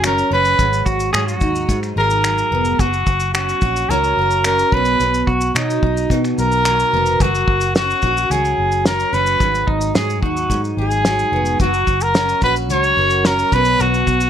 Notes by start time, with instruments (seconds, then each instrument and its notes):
Already playing: fingered electric bass F#1, steel-string acoustic guitar F#3 F#4
0.04 steel-string acoustic guitar C#4, trumpet A#4, finger snap, shaker
0.18 shaker
0.31 fingered electric bass F#1, steel-string acoustic guitar C#4, trumpet B4
0.45 shaker
0.59 fingered electric bass G#1, steel-string acoustic guitar G#2, kick, shaker
0.73 shaker
0.86 fingered electric bass G#1, pedal steel guitar F#4, kick, shaker
1.00 shaker
1.13 fingered electric bass G#2, steel-string acoustic guitar F#3, pedal steel guitar G#4, finger snap, shaker
1.27 pedal steel guitar F#4, shaker
1.41 fingered electric bass D#2, steel-string acoustic guitar D#4, kick, shaker
1.55 shaker
1.69 fingered electric bass G#2, steel-string acoustic guitar G#2, kick, shaker
1.83 finger snap, shaker
1.96 fingered electric bass G#1, steel-string acoustic guitar G#4, trumpet A#4
2.10 shaker
2.24 steel-string acoustic guitar F#3, finger snap, shaker
2.38 shaker
2.51 fingered electric bass F1, steel-string acoustic guitar B3
2.65 shaker
2.79 fingered electric bass F#1, steel-string acoustic guitar F#3, trumpet F#4, kick, shaker
2.93 shaker
3.07 fingered electric bass F#1, kick, shaker
3.20 shaker
3.34 steel-string acoustic guitar C#4, trumpet F#4, finger snap, shaker
3.49 shaker
3.61 fingered electric bass A#1, steel-string acoustic guitar F#4, kick, shaker
3.76 shaker
3.89 fingered electric bass C#2, steel-string acoustic guitar F#3, trumpet A#4, shaker
4.04 shaker
4.17 fingered electric bass F#1, steel-string acoustic guitar A#4
4.31 shaker
4.44 steel-string acoustic guitar C#4, trumpet A#4, finger snap, shaker
4.59 shaker
4.72 fingered electric bass B1, steel-string acoustic guitar B2, trumpet B4, kick
4.85 shaker
5.00 fingered electric bass B1, steel-string acoustic guitar B2, shaker
5.14 shaker
5.27 fingered electric bass B1, pedal steel guitar F#4, kick
5.41 shaker
5.55 fingered electric bass B2, steel-string acoustic guitar F#3, pedal steel guitar D#4, finger snap, shaker
5.70 shaker
5.83 fingered electric bass B1, steel-string acoustic guitar D#4, kick
5.97 shaker
6.10 fingered electric bass B2, steel-string acoustic guitar B2, kick, shaker
6.25 finger snap, shaker
6.38 fingered electric bass B1, steel-string acoustic guitar A#4, trumpet A#4, shaker
6.52 shaker
6.65 steel-string acoustic guitar F#3, finger snap, shaker
6.79 shaker
6.93 fingered electric bass F1, steel-string acoustic guitar B3
7.06 shaker
7.20 fingered electric bass F#1, steel-string acoustic guitar F#3, trumpet F#4, kick, shaker
7.35 shaker
7.48 fingered electric bass F#1, kick
7.61 shaker
7.75 steel-string acoustic guitar C#4, trumpet F#4, snare, shaker
7.90 shaker
8.02 fingered electric bass A#1, steel-string acoustic guitar F#4, kick, shaker
8.17 shaker
8.30 fingered electric bass C#2, steel-string acoustic guitar F#3, trumpet G#4, shaker
8.45 shaker
8.58 fingered electric bass F#1
8.72 shaker
8.86 steel-string acoustic guitar C#4, trumpet A#4, snare, shaker
9.00 shaker
9.13 fingered electric bass F#1, steel-string acoustic guitar C#4, trumpet B4, shaker
9.26 shaker
9.40 fingered electric bass G#1, steel-string acoustic guitar G#2, kick, shaker
9.55 shaker
9.67 fingered electric bass G#1, pedal steel guitar D#4, kick
9.81 shaker
9.95 fingered electric bass G#2, steel-string acoustic guitar F#3, pedal steel guitar G#4, snare, shaker
10.10 shaker
10.22 fingered electric bass D#2, steel-string acoustic guitar D#4, pedal steel guitar F#4, kick
10.37 shaker
10.50 fingered electric bass G#2, steel-string acoustic guitar G#2, kick, shaker
10.65 shaker
10.77 fingered electric bass G#1, steel-string acoustic guitar G#4, trumpet G#4
10.91 shaker
11.05 steel-string acoustic guitar F#3, snare, shaker
11.19 shaker
11.32 fingered electric bass F1, steel-string acoustic guitar B3
11.45 shaker
11.60 fingered electric bass F#1, steel-string acoustic guitar F#3, trumpet F#4, kick, shaker
11.74 shaker
11.87 fingered electric bass F#1, kick, shaker
12.01 trumpet A#4, shaker
12.15 steel-string acoustic guitar C#4, snare, shaker
12.29 shaker
12.41 fingered electric bass A#1, steel-string acoustic guitar F#4, trumpet B4, kick, shaker
12.56 shaker
12.69 fingered electric bass C#2, steel-string acoustic guitar F#3, trumpet C#5, shaker
12.84 shaker
12.97 fingered electric bass F#1, steel-string acoustic guitar A#4
13.10 shaker
13.25 steel-string acoustic guitar C#4, trumpet A#4, snare, shaker
13.39 shaker
13.52 fingered electric bass B1, steel-string acoustic guitar B2, trumpet B4, kick, shaker
13.65 shaker
13.79 fingered electric bass B1, steel-string acoustic guitar B2, trumpet F#4, shaker
13.94 shaker
14.07 fingered electric bass B1, kick, shaker
14.21 shaker